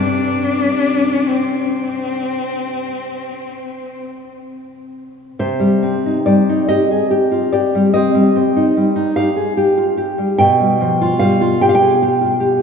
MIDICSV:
0, 0, Header, 1, 3, 480
1, 0, Start_track
1, 0, Key_signature, -3, "minor"
1, 0, Tempo, 930233
1, 1858, Tempo, 882353
1, 2826, Time_signature, 12, 3, 24, 8
1, 3298, Tempo, 840336
1, 4258, Tempo, 814111
1, 7025, End_track
2, 0, Start_track
2, 0, Title_t, "Nylon-string guitar"
2, 0, Program_c, 0, 24
2, 0, Note_on_c, 0, 48, 59
2, 0, Note_on_c, 0, 55, 47
2, 0, Note_on_c, 0, 60, 40
2, 2791, Note_off_c, 0, 48, 0
2, 2797, Note_off_c, 0, 55, 0
2, 2802, Note_off_c, 0, 60, 0
2, 2833, Note_on_c, 0, 48, 75
2, 2835, Note_on_c, 0, 72, 83
2, 2944, Note_on_c, 0, 55, 55
2, 3068, Note_on_c, 0, 60, 50
2, 3132, Note_off_c, 0, 55, 0
2, 3196, Note_on_c, 0, 63, 56
2, 3253, Note_off_c, 0, 60, 0
2, 3281, Note_off_c, 0, 72, 0
2, 3304, Note_on_c, 0, 74, 80
2, 3309, Note_on_c, 0, 55, 51
2, 3380, Note_off_c, 0, 63, 0
2, 3438, Note_on_c, 0, 63, 57
2, 3499, Note_off_c, 0, 55, 0
2, 3535, Note_off_c, 0, 74, 0
2, 3548, Note_on_c, 0, 75, 85
2, 3555, Note_on_c, 0, 67, 61
2, 3623, Note_off_c, 0, 63, 0
2, 3674, Note_off_c, 0, 67, 0
2, 3676, Note_on_c, 0, 68, 51
2, 3786, Note_off_c, 0, 68, 0
2, 3788, Note_on_c, 0, 67, 57
2, 3908, Note_on_c, 0, 65, 49
2, 3977, Note_off_c, 0, 67, 0
2, 4005, Note_off_c, 0, 75, 0
2, 4024, Note_off_c, 0, 65, 0
2, 4027, Note_on_c, 0, 74, 77
2, 4031, Note_on_c, 0, 67, 54
2, 4156, Note_on_c, 0, 55, 52
2, 4215, Note_off_c, 0, 67, 0
2, 4238, Note_off_c, 0, 48, 0
2, 4250, Note_off_c, 0, 74, 0
2, 4262, Note_on_c, 0, 75, 88
2, 4271, Note_on_c, 0, 60, 56
2, 4337, Note_off_c, 0, 55, 0
2, 4385, Note_on_c, 0, 55, 60
2, 4456, Note_off_c, 0, 60, 0
2, 4511, Note_on_c, 0, 60, 51
2, 4573, Note_off_c, 0, 55, 0
2, 4633, Note_on_c, 0, 63, 64
2, 4696, Note_off_c, 0, 60, 0
2, 4753, Note_on_c, 0, 55, 54
2, 4818, Note_off_c, 0, 63, 0
2, 4865, Note_on_c, 0, 63, 51
2, 4938, Note_off_c, 0, 55, 0
2, 4957, Note_off_c, 0, 75, 0
2, 4983, Note_on_c, 0, 67, 60
2, 4985, Note_on_c, 0, 77, 83
2, 5053, Note_off_c, 0, 63, 0
2, 5103, Note_on_c, 0, 68, 48
2, 5173, Note_off_c, 0, 67, 0
2, 5221, Note_off_c, 0, 68, 0
2, 5227, Note_on_c, 0, 67, 62
2, 5348, Note_on_c, 0, 65, 45
2, 5416, Note_off_c, 0, 67, 0
2, 5464, Note_off_c, 0, 65, 0
2, 5464, Note_on_c, 0, 67, 65
2, 5586, Note_on_c, 0, 55, 53
2, 5654, Note_off_c, 0, 67, 0
2, 5679, Note_off_c, 0, 77, 0
2, 5703, Note_off_c, 0, 55, 0
2, 5706, Note_on_c, 0, 79, 107
2, 5712, Note_on_c, 0, 47, 76
2, 5834, Note_on_c, 0, 55, 56
2, 5956, Note_on_c, 0, 53, 52
2, 6021, Note_off_c, 0, 55, 0
2, 6078, Note_on_c, 0, 65, 61
2, 6142, Note_off_c, 0, 53, 0
2, 6166, Note_off_c, 0, 79, 0
2, 6184, Note_on_c, 0, 77, 101
2, 6190, Note_on_c, 0, 55, 58
2, 6262, Note_off_c, 0, 65, 0
2, 6312, Note_on_c, 0, 65, 63
2, 6377, Note_off_c, 0, 55, 0
2, 6413, Note_off_c, 0, 77, 0
2, 6431, Note_on_c, 0, 79, 95
2, 6435, Note_on_c, 0, 67, 69
2, 6466, Note_off_c, 0, 79, 0
2, 6476, Note_on_c, 0, 77, 91
2, 6499, Note_off_c, 0, 65, 0
2, 6507, Note_off_c, 0, 77, 0
2, 6509, Note_on_c, 0, 79, 102
2, 6547, Note_on_c, 0, 68, 52
2, 6620, Note_off_c, 0, 67, 0
2, 6664, Note_off_c, 0, 68, 0
2, 6672, Note_on_c, 0, 67, 69
2, 6783, Note_on_c, 0, 65, 51
2, 6858, Note_off_c, 0, 67, 0
2, 6895, Note_on_c, 0, 67, 62
2, 6901, Note_off_c, 0, 65, 0
2, 7025, Note_off_c, 0, 47, 0
2, 7025, Note_off_c, 0, 67, 0
2, 7025, Note_off_c, 0, 79, 0
2, 7025, End_track
3, 0, Start_track
3, 0, Title_t, "Cello"
3, 0, Program_c, 1, 42
3, 0, Note_on_c, 1, 62, 79
3, 661, Note_on_c, 1, 60, 60
3, 669, Note_off_c, 1, 62, 0
3, 2098, Note_off_c, 1, 60, 0
3, 7025, End_track
0, 0, End_of_file